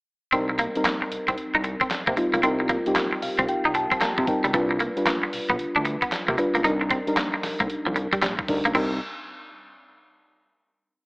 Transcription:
0.32 analog synth bass C2, fm electric piano G3 C4 D#4 A#4, clean electric guitar C4, kick, closed hi-hat
0.49 muted clean electric guitar stroke
0.59 clean electric guitar A#3, closed hi-hat
0.75 fm electric piano G3 C4 D#4 A#4, closed hi-hat
0.85 clean electric guitar A#3, snare, clap, closed hi-hat
1.02 muted clean electric guitar stroke
1.12 analog synth bass C2, closed hi-hat
1.28 analog synth bass C2, clean electric guitar C4, kick, closed hi-hat
1.38 analog synth bass C2, closed hi-hat
1.55 analog synth bass C2, clean electric guitar D#4
1.64 muted clean electric guitar stroke, closed hi-hat
1.81 clean electric guitar C4, kick, closed hi-hat
1.91 snare, clap, closed hi-hat
2.07 analog synth bass C3, clean electric guitar A#3, kick
2.17 fm electric piano G3 C4 D#4 F4, muted clean electric guitar stroke, closed hi-hat
2.34 analog synth bass C#2, clean electric guitar A#3, closed hi-hat
2.43 analog synth bass C2, fm electric piano G3 C4 D#4 A#4, clean electric guitar C4, closed hi-hat
2.60 muted clean electric guitar stroke
2.69 clean electric guitar A#3, kick, closed hi-hat
2.86 fm electric piano G3 C4 D#4 G4, closed hi-hat
2.96 clean electric guitar A#3, snare, clap, closed hi-hat
3.13 muted clean electric guitar stroke
3.22 analog synth bass C2, fm electric piano F5, open hi-hat
3.39 analog synth bass C2, clean electric guitar C4, kick, closed hi-hat
3.49 analog synth bass C2, fm electric piano G5, closed hi-hat
3.65 analog synth bass C2, clean electric guitar D#4
3.75 fm electric piano A5, muted clean electric guitar stroke, closed hi-hat
3.92 clean electric guitar C4, kick, closed hi-hat
4.01 clean electric guitar A#3, fm electric piano A#5, snare, clap, closed hi-hat
4.18 analog synth bass C3, muted clean electric guitar stroke, kick
4.27 fm electric piano G3 C4 D#4 A#4 G5, kick, closed hi-hat
4.44 analog synth bass C#2, clean electric guitar G3, closed hi-hat
4.53 analog synth bass C2, fm electric piano G3 D4 F4 B4, clean electric guitar G3, kick, closed hi-hat
4.71 muted clean electric guitar stroke
4.80 clean electric guitar A#3, closed hi-hat
4.97 fm electric piano G3 D4 F4 B4, closed hi-hat
5.07 clean electric guitar A#3, snare, clap, closed hi-hat
5.23 muted clean electric guitar stroke
5.33 analog synth bass B1, open hi-hat
5.50 analog synth bass B1, clean electric guitar B3, kick, closed hi-hat
5.59 analog synth bass D2, closed hi-hat
5.76 analog synth bass D2, clean electric guitar D4
5.85 muted clean electric guitar stroke, closed hi-hat
6.02 clean electric guitar B3, kick, closed hi-hat
6.12 snare, clap, closed hi-hat
6.28 analog synth bass C3, clean electric guitar A#3, kick
6.38 fm electric piano G3 D4 F4 B4, muted clean electric guitar stroke, closed hi-hat
6.55 analog synth bass C#2, clean electric guitar A#3, closed hi-hat
6.64 analog synth bass C2, fm electric piano G3 D4 D#4 A#4, clean electric guitar D#4, closed hi-hat
6.81 muted clean electric guitar stroke
6.90 clean electric guitar C4, kick, closed hi-hat
7.07 fm electric piano G3 D4 D#4 A#4, closed hi-hat
7.17 clean electric guitar A#3, snare, clap, closed hi-hat
7.34 muted clean electric guitar stroke
7.43 analog synth bass C2, snare, open hi-hat
7.60 analog synth bass C2, clean electric guitar A#3, kick, closed hi-hat
7.70 analog synth bass C2, closed hi-hat
7.86 analog synth bass C2, clean electric guitar F3
7.96 muted clean electric guitar stroke, closed hi-hat
8.13 clean electric guitar G3, kick, closed hi-hat
8.22 analog synth bass A#1, clean electric guitar G3, snare, clap, closed hi-hat
8.39 muted clean electric guitar stroke, kick
8.48 analog synth bass D2, fm electric piano G3 D4 D#4 A#4, kick, open hi-hat
8.65 analog synth bass C#2, clean electric guitar A#3, closed hi-hat
8.75 analog synth bass C2, fm electric piano G3 C4 D#4 A#4, clean electric guitar C4, kick, crash

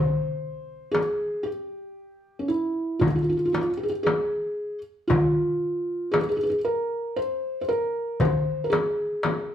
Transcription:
Already playing: felt piano C5
0.91 felt piano G#4, darbuka tek, frame drum
1.43 felt piano G4
2.39 felt piano C#4
2.48 felt piano E4, darbuka ka
2.99 felt piano F4, darbuka dum, frame drum
3.07 felt piano F4
3.16 felt piano F4
3.22 felt piano F4
3.30 felt piano F4
3.37 felt piano F4
3.45 felt piano F4
3.53 felt piano F4, darbuka tek, frame drum
3.61 felt piano F4
3.77 felt piano G4
3.83 felt piano G#4
3.89 felt piano G4
4.03 felt piano G#4, darbuka tek, frame drum
5.08 felt piano F4, frame drum, darbuka dum
6.12 felt piano G#4, darbuka tek, frame drum
6.20 felt piano G#4
6.29 felt piano G#4
6.37 felt piano G#4
6.43 felt piano G#4
6.50 felt piano G#4
6.65 felt piano A#4
7.16 felt piano C5
7.61 felt piano C5
7.68 felt piano A#4, darbuka ka
8.20 felt piano C5, darbuka dum, frame drum
8.64 felt piano A#4
8.70 felt piano G#4, darbuka tek, frame drum
9.23 darbuka tek, frame drum

